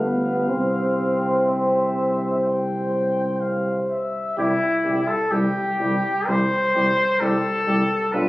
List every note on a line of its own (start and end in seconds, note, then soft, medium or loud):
0.00 0.50 G1 soft
0.00 0.48 B3 medium
0.00 4.05 G4 soft
0.00 0.49 B4 soft
0.00 1.42 F5 soft
0.47 4.05 C2 soft
0.47 3.37 C4 medium
0.47 4.04 C5 soft
1.46 2.40 E5 soft
2.44 3.42 G5 soft
3.41 3.75 F5 soft
3.90 4.37 E5 soft
4.37 4.54 C2 medium
4.37 4.54 G3 medium
4.37 5.10 E4 medium
4.37 4.54 E4 medium
4.37 4.53 G4 medium
4.84 5.00 C2 medium
4.84 5.01 G3 medium
4.84 5.02 E4 soft
4.84 5.00 G4 soft
5.08 5.33 A4 medium
5.31 5.47 C2 medium
5.31 5.48 G3 medium
5.31 5.47 E4 medium
5.31 6.29 G4 medium
5.31 5.48 G4 soft
5.79 5.95 C2 medium
5.79 5.96 G3 medium
5.79 5.96 E4 soft
5.79 5.96 G4 medium
6.27 6.44 C2 medium
6.27 6.44 G3 medium
6.27 6.45 E4 soft
6.27 6.44 G4 soft
6.27 7.21 C5 medium
6.74 6.91 C2 medium
6.74 6.91 G3 medium
6.74 6.91 E4 medium
6.74 6.90 G4 soft
7.20 7.37 C2 medium
7.20 7.37 G3 medium
7.20 7.37 E4 medium
7.20 7.37 G4 medium
7.20 8.14 A4 medium
7.67 7.83 C2 medium
7.67 7.83 G3 medium
7.67 7.83 E4 soft
7.67 7.83 G4 medium
8.12 8.29 B1 medium
8.12 8.29 G3 medium
8.12 8.29 D4 medium
8.12 8.29 F4 medium
8.12 8.29 B4 medium